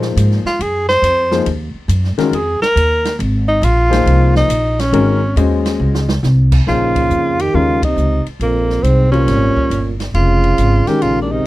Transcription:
0.00 0.15 A#2 medium
0.00 0.40 F3 medium
0.00 0.40 A#3 medium
0.00 0.40 D#4 medium
0.00 0.40 G#4 medium
0.00 0.40 C5 medium
0.00 snare soft
0.16 0.43 G#2 medium
0.16 hi-hat pedal medium
0.16 ride medium
0.31 snare soft
0.45 0.63 F4 medium
0.45 muted upright bass stroke soft
0.45 snare soft
0.59 1.01 F#2 medium
0.59 0.88 G#4 medium
0.59 ride medium
0.89 1.43 C5 loud
0.89 snare soft
1.02 1.45 F2 medium
1.02 hi-hat pedal medium
1.02 ride medium
1.31 1.45 F3 medium
1.31 1.45 A#3 medium
1.31 1.45 D#4 medium
1.31 1.45 G#4 medium
1.31 1.45 C5 medium
1.31 snare medium
1.46 1.73 D#2 medium
1.46 ride medium
1.74 muted upright bass stroke soft
1.88 2.16 F#2 medium
1.88 hi-hat pedal medium
1.88 ride medium
2.04 snare soft
2.17 2.31 D#3 medium
2.17 2.31 G#3 medium
2.17 2.32 C#4 medium
2.17 2.35 F4 soft
2.17 2.32 F#4 medium
2.17 2.32 A#4 medium
2.17 muted upright bass stroke soft
2.17 snare soft
2.17 ride medium
2.31 2.59 F2 medium
2.31 2.61 G#4 medium
2.31 ride medium
2.60 3.16 A#4 loud
2.60 muted upright bass stroke soft
2.60 snare medium
2.75 3.18 D#2 medium
2.75 hi-hat pedal medium
2.75 ride medium
3.05 snare medium
3.05 ride medium
3.19 3.61 G#1 medium
3.19 ride medium
3.48 3.66 D#4 loud
3.62 4.05 A#1 loud
3.62 4.36 F4 loud
3.62 hi-hat pedal medium
3.62 ride medium
3.90 4.46 F3 medium
3.90 4.46 A#3 medium
3.90 4.46 D#4 medium
3.90 4.46 G#4 medium
3.90 4.46 C5 medium
3.90 snare medium
3.90 ride medium
4.06 4.48 C2 medium
4.06 ride medium
4.35 4.82 D#4 medium
4.35 snare medium
4.49 4.91 A#1 medium
4.49 hi-hat pedal medium
4.49 ride medium
4.79 5.37 C#4 loud
4.79 snare medium
4.79 ride medium
4.92 5.35 G#1 medium
4.92 5.19 D#3 medium
4.92 5.19 G#3 medium
4.92 5.19 C#4 medium
4.92 5.19 F#4 medium
4.92 5.19 A#4 medium
4.92 ride medium
5.36 5.78 D#2 loud
5.36 6.03 G#3 medium
5.36 6.03 C#4 medium
5.36 6.03 F#4 medium
5.36 6.03 C5 medium
5.36 6.03 D#5 medium
5.36 hi-hat pedal medium
5.36 ride medium
5.65 snare medium
5.65 ride medium
5.79 6.22 C#2 medium
5.95 snare medium
6.09 snare loud
6.23 6.65 C2 medium
6.23 snare medium
6.23 hi-hat pedal medium
6.52 kick medium
6.52 crash medium
6.67 7.09 A#1 medium
6.67 7.41 C#3 medium
6.67 7.33 F3 medium
6.67 7.33 A#3 medium
6.67 7.34 D#4 medium
6.67 7.42 F4 medium
6.67 7.34 G#4 medium
6.67 7.34 C5 medium
6.67 snare soft
6.96 kick soft
6.96 ride medium
7.10 7.52 F2 medium
7.10 hi-hat pedal medium
7.39 7.57 D#3 medium
7.39 7.56 G4 medium
7.39 ride medium
7.53 7.95 D#2 medium
7.53 7.83 C#3 medium
7.53 7.80 D#3 medium
7.53 7.80 G#3 medium
7.53 7.80 C#4 medium
7.53 7.83 F4 medium
7.53 7.80 G4 medium
7.53 7.80 A#4 medium
7.83 8.24 C3 medium
7.83 8.24 D#4 medium
7.83 kick medium
7.83 ride medium
7.96 8.23 C#2 medium
7.96 hi-hat pedal medium
8.26 muted upright bass stroke soft
8.26 ride soft
8.40 8.82 A#1 medium
8.40 8.85 F2 medium
8.40 8.85 A#3 medium
8.40 ride medium
8.70 snare soft
8.83 9.26 C2 medium
8.83 9.11 G#2 medium
8.83 9.11 C4 medium
8.83 hi-hat pedal medium
8.83 ride medium
9.12 9.96 A#2 medium
9.12 9.68 G3 medium
9.12 9.95 C#4 medium
9.12 9.68 F4 medium
9.12 9.68 A#4 medium
9.12 9.68 C5 medium
9.12 9.68 C#5 medium
9.12 ride soft
9.27 9.54 G#1 medium
9.27 snare soft
9.27 ride medium
9.56 muted upright bass stroke soft
9.56 kick medium
9.70 10.13 G1 medium
9.70 hi-hat pedal medium
9.70 ride medium
10.00 snare medium
10.00 ride soft
10.14 10.57 F1 medium
10.14 10.89 C#3 medium
10.14 10.89 F4 medium
10.14 ride medium
10.44 ride soft
10.58 10.85 G#1 medium
10.58 hi-hat pedal medium
10.58 ride medium
10.87 11.05 D#3 medium
10.87 11.43 D#3 medium
10.87 11.43 G#3 medium
10.87 11.43 C#4 medium
10.87 11.03 G4 medium
10.87 11.43 G4 medium
10.87 11.43 A#4 medium
10.87 snare soft
10.87 ride soft
11.02 11.44 A#1 medium
11.02 11.22 C#3 medium
11.02 11.21 F4 medium
11.02 ride medium
11.22 11.33 A#2 soft
11.22 11.33 D4 medium
11.31 11.47 C3 medium
11.31 11.47 D#4 medium

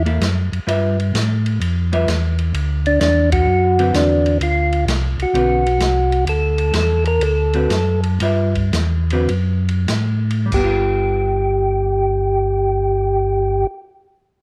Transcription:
0.00 0.19 E2 medium
0.05 0.19 A#3 medium
0.05 0.20 E4 medium
0.05 0.20 A4 medium
0.05 ride soft
0.21 0.50 F#2 medium
0.21 snare medium
0.21 hi-hat pedal medium
0.21 ride medium
0.52 0.60 F#2 soft
0.52 ride soft
0.67 1.12 G2 medium
0.67 0.95 G3 medium
0.67 0.96 F4 medium
0.67 0.96 B4 medium
0.67 0.96 E5 medium
0.67 ride medium
1.00 ride soft
1.14 1.59 A2 medium
1.14 snare medium
1.14 hi-hat pedal medium
1.14 ride medium
1.46 ride soft
1.60 2.06 F2 medium
1.60 ride medium
1.92 2.06 G3 medium
1.92 2.06 F4 medium
1.92 2.06 B4 medium
1.92 2.07 E5 medium
1.92 ride soft
2.07 2.52 E2 medium
2.07 snare medium
2.07 hi-hat pedal medium
2.07 ride medium
2.39 ride soft
2.53 2.99 D2 medium
2.53 ride medium
2.86 3.00 D4 medium
2.86 ride soft
3.01 3.46 E2 loud
3.01 3.30 D4 medium
3.01 snare medium
3.01 hi-hat pedal medium
3.01 ride medium
3.32 3.96 F#4 medium
3.32 kick medium
3.32 ride medium
3.47 3.92 F#2 medium
3.78 4.37 D3 medium
3.78 4.38 C4 medium
3.78 4.38 F#4 medium
3.78 4.38 B4 medium
3.78 ride soft
3.94 4.39 E2 medium
3.94 4.38 D4 medium
3.94 snare medium
3.94 hi-hat pedal medium
3.94 ride medium
4.26 ride soft
4.40 4.85 D2 medium
4.40 4.85 F4 medium
4.40 ride medium
4.72 ride soft
4.87 5.16 C2 medium
4.87 snare medium
4.87 hi-hat pedal medium
4.87 ride medium
5.18 5.26 C2 soft
5.18 ride soft
5.22 6.25 F#4 medium
5.33 5.79 B1 medium
5.33 5.62 D3 medium
5.33 5.62 C4 medium
5.33 5.62 F#4 medium
5.33 5.63 B4 medium
5.33 ride medium
5.66 ride soft
5.80 6.25 C2 medium
5.80 snare medium
5.80 hi-hat pedal medium
5.80 ride medium
6.12 ride soft
6.26 6.72 D2 medium
6.26 6.75 A4 medium
6.26 ride medium
6.58 ride soft
6.73 7.19 E2 medium
6.73 7.04 A4 loud
6.73 snare medium
6.73 hi-hat pedal soft
6.73 ride medium
7.05 7.23 A#4 medium
7.05 ride soft
7.20 7.68 D2 medium
7.20 8.01 A4 medium
7.20 ride medium
7.53 7.68 D3 medium
7.53 7.69 C4 medium
7.53 7.69 F#4 medium
7.53 7.69 B4 medium
7.53 ride soft
7.70 8.19 F#2 medium
7.70 snare medium
7.70 hi-hat pedal medium
7.70 ride medium
8.03 ride soft
8.20 8.72 G2 medium
8.20 8.53 G3 medium
8.20 8.53 F4 medium
8.20 8.53 B4 medium
8.20 8.53 E5 medium
8.20 ride medium
8.55 kick soft
8.55 ride soft
8.73 9.28 E2 medium
8.73 snare medium
8.73 hi-hat pedal medium
8.73 ride medium
9.10 9.28 D3 medium
9.10 9.28 C4 medium
9.10 9.28 F#4 medium
9.10 9.29 B4 medium
9.10 ride soft
9.29 9.87 F#2 medium
9.29 ride medium
9.69 ride soft
9.88 10.51 A2 medium
9.88 snare medium
9.88 hi-hat pedal medium
9.88 ride medium
10.31 ride soft
10.46 13.63 G3 medium
10.52 13.65 G1 medium
10.52 13.67 G4 medium
10.52 kick medium
10.52 crash medium
10.56 13.73 B3 medium
10.64 13.81 F4 medium
10.71 13.88 A4 medium

